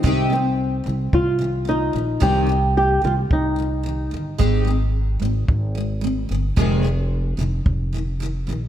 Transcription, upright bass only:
\new Staff \with { instrumentName = "Upright bass" } { \clef bass \time 4/4 \key c \minor \tempo 4 = 110 c,4. c,8 c,4. bes,,8 | c,4. c,8 c,4. g,,8 | aes,,4. aes,,8 aes,,4. g,,8 | f,,4. f,,8 f,,4. bes,,8 | }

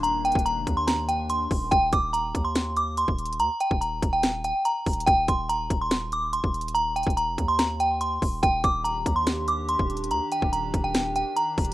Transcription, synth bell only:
\new Staff \with { instrumentName = "Synth bell" } { \time 4/4 \key ees \major \tempo 4 = 143 bes''8 g''8 bes''8. c'''16 bes''8 g''8 c'''4 | g''8 d'''8 bes''8. c'''8. d'''8 c'''4 | bes''8 g''8 bes''8. g''8. g''8 bes''4 | g''8 c'''8 bes''8. c'''8. d'''8 c'''4 |
bes''8 g''8 bes''8. c'''16 bes''8 g''8 c'''4 | g''8 d'''8 bes''8. c'''8. d'''8 c'''4 | bes''8 g''8 bes''8. g''8. g''8 bes''4 | }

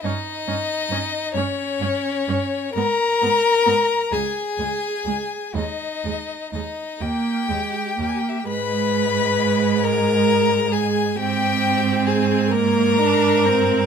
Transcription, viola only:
\new Staff \with { instrumentName = "Viola" } { \time 6/8 \key gis \minor \tempo 4. = 44 cis'8 cis'8 cis'8 cis'8 cis'8 cis'8 | b8 b8 b8 gis8 gis8 gis8 | gis8 gis8 gis8 ais8 gis8 ais8 | gis2. |
bis4. ais8 d'8 bis8 | }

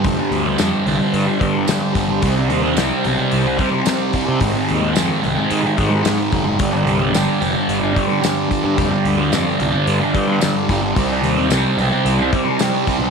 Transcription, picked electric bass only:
\new Staff \with { instrumentName = "Picked electric bass" } { \clef bass \time 4/4 \tempo 4 = 110 f,,16 r16 d,8 f,16 r16 c,16 r16 g,16 r16 g,8 g,16 r16 g,,8 | c,8 ees,8 c,16 r16 b,,16 r16 c,8 r4 r16 c16 | aes,,16 r16 ees,8 f,16 r16 c,16 r16 aes,16 r16 aes,8 aes,16 r16 fis,,8 | g,,8 c,8 g,,16 r16 f,,16 r16 g,,8 r4 r16 g,16 |
f,,16 r16 d,8 f,16 r16 c,16 r16 g,16 r16 g,8 g,16 r16 g,,8 | c,8 ees,8 c,16 r16 b,,16 r16 c,8 r4 r16 b,,16 | }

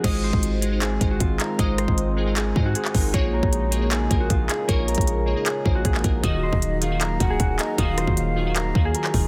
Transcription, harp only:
\new Staff \with { instrumentName = "Harp" } { \time 4/4 \key aes \mixolydian \tempo 4 = 155 ees''8 c''4. aes'8. ges'16 f'8 bes'8 | ees''8 c''4. aes'8. ges'16 aes'4 | des''8 bes'4. aes'8. ges'16 f'8 aes'8 | des''8 bes'4. aes'8. ges'16 aes'4 |
ees''8 c''4. bes'8. aes'16 ges'8 bes'8 | ees''8 c''4. bes'8. aes'16 bes'4 | }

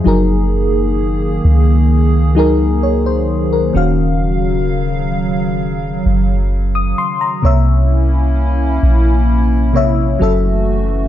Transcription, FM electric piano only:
\new Staff \with { instrumentName = "FM electric piano" } { \time 4/4 \key ges \lydian \tempo 4 = 65 << { r2. des''16 c''8 bes'16~ | bes'16 r2. ees'''16 c'''16 bes''16~ | bes''16 r2. r8. | } \\ { <ges ees' aes' bes'>4. r4 <ges ees' aes' bes'>4~ <ges ees' aes' bes'>16 r16 | <ees des' ges' f''>4. r2 r8 | <c bes des'' e''>4. r4 <c bes des'' e''>8 <ges des' a' fes''>4 | } >> }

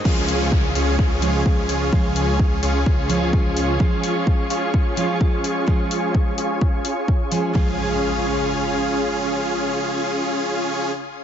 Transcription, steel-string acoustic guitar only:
\new Staff \with { instrumentName = "Steel-string acoustic guitar" } { \time 4/4 \key des \major \tempo 4 = 128 <f aes des' f'>2~ <f aes des' f'>8 <f aes des' f'>4. | <f aes des' f'>2~ <f aes des' f'>8 <f aes des' f'>4. | <f aes des' f'>2~ <f aes des' f'>8 <f aes des' f'>4. | <f aes des' f'>2~ <f aes des' f'>8 r4 <f aes des' aes'>8 |
<f aes des' f'>1~ | <f aes des' f'>1 | }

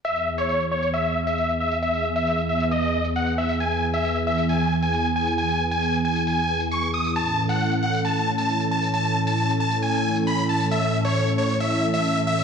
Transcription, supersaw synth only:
\new Staff \with { instrumentName = "Supersaw synth" } { \time 4/4 \key e \major \tempo 4 = 135 e''8 r16 cis''8 r16 cis''8 e''8 r16 e''8 r16 e''8 | e''8 r16 e''8 r16 e''8 dis''8. r16 fis''8 e''8 | gis''8 r16 e''8 r16 e''8 gis''8 r16 gis''8 r16 gis''8 | gis''8 r16 gis''8 r16 gis''8 gis''8. r16 cis'''8 dis'''8 |
a''8 r16 fis''8 r16 fis''8 a''8 r16 a''8 r16 a''8 | a''8 r16 a''8 r16 a''8 gis''8. r16 b''8 a''8 | e''8 r16 cis''8 r16 cis''8 e''8 r16 e''8 r16 e''8 | }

